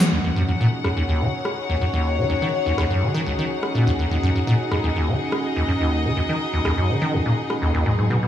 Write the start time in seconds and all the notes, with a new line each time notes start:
Already playing: F#5
0.00 F#3, snare, closed hi-hat, shaker
0.12 D#2 D#3 C#4 D#4 F#4
0.24 D#2
0.36 F#2
0.42 G#4 C#5
0.49 F#2
0.60 A#2
0.84 F#2, cross-stick
0.97 D#2
1.09 D#2
1.21 D#3
1.45 cross-stick
1.69 D#2
1.81 F#2
1.94 D#2
2.18 D#3
2.30 D#2
2.42 D#3
2.66 D#2
2.78 D#2, cross-stick
2.90 F#2
3.02 D#3
3.15 D#3
3.26 C#2
3.39 D#3
3.63 cross-stick
3.75 A#2
3.87 D#2
3.99 D#2
4.11 D#2
4.23 F#2
4.36 F#2
4.47 A#2
4.53 D#5
4.72 F#2, cross-stick
4.84 D#2
4.96 D#2
5.08 D#3
5.32 cross-stick
5.57 D#2
5.68 F#2
5.81 D#2
6.05 D#3
6.17 D#2
6.29 D#3
6.53 D#2
6.65 D#2, cross-stick
6.78 F#2
6.89 D#3
7.02 D#3
7.13 C#2
7.26 A#2
7.50 cross-stick
7.62 D#2
7.74 D#2
7.86 G#2 F#3 B3 G#4
7.99 G#2
8.10 B2 C#5
8.23 B2